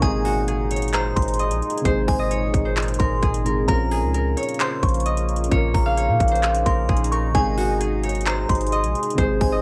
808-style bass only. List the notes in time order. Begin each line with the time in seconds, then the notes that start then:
0.02 G#1
1.17 G#1
1.51 A#1
1.85 G#1
2.08 G#1
2.54 G#1
3.00 G#1
3.23 G#1
3.68 A#1
4.03 C#2
4.83 A#1
5.52 A#1
5.75 A#1
6.09 A#2
6.20 A#1
6.66 A#1
6.89 A#1
7.35 G#1
8.49 G#1
8.84 A#1
9.18 G#1
9.41 G#1